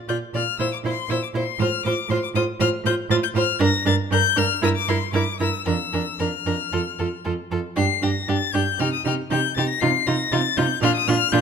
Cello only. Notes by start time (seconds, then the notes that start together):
0.08 A#2
0.34 A#2
0.59 A#2
0.84 A#2
1.09 A#2
1.34 A#2
1.59 A2
1.85 A2
2.09 A2
2.34 A2
2.60 A2
2.84 A2
3.09 A2
3.35 A2
3.60 G2
3.86 G2
4.11 G2
4.37 G2
4.62 G2
4.88 G2
5.13 G2
5.40 G2
5.66 F2
5.93 F2
6.19 F2
6.46 F2
6.73 F2
6.99 F2
7.26 F2
7.51 F2
7.77 G2
8.03 G2
8.28 G2
8.54 G2
8.79 C3
9.05 C3
9.31 C3
9.57 C3
9.82 C3
10.07 C3
10.32 C3
10.57 C3
10.82 A#2
11.08 A#2
11.32 A#2